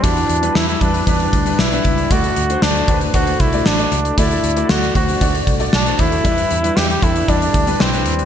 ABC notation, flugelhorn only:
X:1
M:4/4
L:1/16
Q:1/4=116
K:Em
V:1 name="Flugelhorn"
D4 E E D2 D4 E4 | F4 D4 F2 E2 D4 | E4 F2 F4 z2 D2 E2- | E4 G G E2 D4 C4 |]